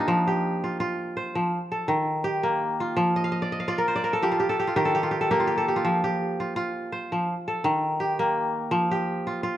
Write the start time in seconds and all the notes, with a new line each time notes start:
Already playing: D#3 A#3 D4 F4 G4 A#4
0.00 D#4
0.08 F3
0.27 G4
0.64 F4
0.80 F4
1.17 C5
1.35 F3
1.72 A4
1.88 D#3
2.24 G4
2.43 A#3
2.80 F4
2.97 F3
3.16 D#5
3.24 F5
3.32 D#5
3.42 D5
3.52 D#5
3.60 F5
3.68 F4 D5
3.78 A#4
3.88 C5
3.96 D5
4.04 A#4
4.13 A4
4.23 F3 G4
4.32 F4
4.40 G4
4.49 A4
4.59 G4
4.67 F4
4.76 D#3 G4
4.85 A4
4.95 G4
5.03 F4
5.11 G4
5.21 A4
5.31 A#3 G4
5.40 F4
5.47 G4
5.58 A4
5.68 G4
5.76 F4
5.85 F3
6.04 G4
6.40 F4
6.56 F4
6.92 C5
7.12 F3
7.48 A4
7.64 D#3
8.00 G4
8.19 A#3
8.71 F3
8.91 G4
9.27 F4
9.43 F4